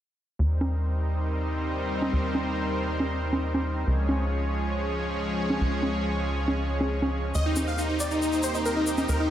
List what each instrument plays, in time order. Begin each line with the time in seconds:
0.39 analog synth bass D#2, supersaw synth G3 C4 D#4 A#4 C5
0.61 high conga
2.02 high conga
2.13 analog synth bass D#2
2.35 high conga
3.00 high conga
3.33 high conga
3.54 high conga
3.87 analog synth bass C#2, supersaw synth F3 G#3 C#4 G#4 C#5
4.09 high conga
5.50 high conga
5.61 analog synth bass C#2
5.83 high conga
6.48 high conga
6.81 high conga
7.02 high conga
7.35 analog synth bass D#2, supersaw synth A#3 C4 D#4 G4 C5 D#5, shaker
7.46 supersaw synth D#4
7.56 supersaw synth D#4, high conga, shaker
7.67 supersaw synth F5, shaker
7.78 supersaw synth D#4, shaker
7.89 supersaw synth D#4
8.00 supersaw synth D5, shaker
8.11 supersaw synth D#4, shaker
8.22 supersaw synth D#4, shaker
8.32 supersaw synth D#4, shaker
8.43 supersaw synth C5, shaker
8.54 supersaw synth D#4, shaker
8.65 supersaw synth A#4, shaker
8.76 supersaw synth D#4
8.87 supersaw synth D#4, shaker
8.97 supersaw synth D#4, high conga, shaker
9.09 analog synth bass D#2, supersaw synth A#4, shaker
9.20 supersaw synth D#4